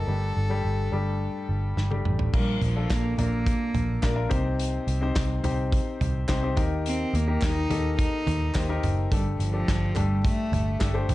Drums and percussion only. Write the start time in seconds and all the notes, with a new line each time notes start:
1.77 snare
1.92 high tom
2.05 mid tom
2.19 floor tom
2.34 kick, crash
2.62 closed hi-hat, floor tom
2.90 kick, snare, clap, closed hi-hat
3.19 closed hi-hat, floor tom
3.46 kick, closed hi-hat
3.75 closed hi-hat, floor tom
4.03 kick, snare, clap, closed hi-hat
4.31 kick, closed hi-hat, floor tom
4.60 closed hi-hat
4.88 closed hi-hat
5.16 kick, snare, clap, closed hi-hat
5.44 closed hi-hat, floor tom
5.72 kick, closed hi-hat
6.01 closed hi-hat, floor tom
6.28 kick, snare, clap, closed hi-hat
6.57 kick, closed hi-hat, floor tom
6.86 closed hi-hat
7.15 closed hi-hat
7.41 kick, snare, clap, closed hi-hat
7.44 clap
7.71 closed hi-hat, floor tom
7.99 kick, closed hi-hat
8.27 closed hi-hat, floor tom
8.54 kick, snare, clap, closed hi-hat
8.56 clap
8.83 closed hi-hat, floor tom
9.12 kick, closed hi-hat
9.40 closed hi-hat
9.68 kick, snare, clap, closed hi-hat
9.95 clap, closed hi-hat, floor tom
10.25 kick, closed hi-hat
10.53 closed hi-hat, floor tom
10.81 kick, snare, clap, closed hi-hat
11.09 closed hi-hat, floor tom